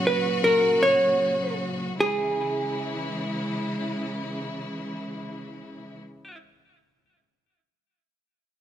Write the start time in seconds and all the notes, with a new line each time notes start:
Already playing: A#2 C#3 F#3 F#4
0.07 B4
0.44 A#4
0.83 C#5
1.99 C#3 E3 G#3 E4 G#4